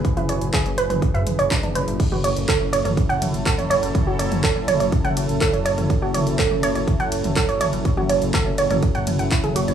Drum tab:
CC |----------------|x---------------|----------------|----------------|
RD |----------------|x-x-x-x-x-x-x-x-|x-x-x-x-x-x-x-x-|x-x-x-x-x-x-x-x-|
HH |xxxxxxxxxxxxxxxx|x-xxx-xxxxxxxxxx|x-xxx-xxxxxxxxxx|x-xxx-xxxxxxxxxx|
CP |----x-------x---|----x-------x---|----x-------x---|----x-------x---|
T2 |-o--o--o--o--o--|-o--o--o--o--o--|o--o--o--o--o--o|--o--o--o--o--o-|
BD |o---o---o---o---|o---o---o---o---|o---o---o---o---|o---o---o---o---|

CC |----------------|
RD |x-x-x-x-x-x-x-x-|
HH |x-xxx-xxxxxxxxxx|
CP |----x-------x---|
T2 |-o--o--o--o--o--|
BD |o---o---o---o---|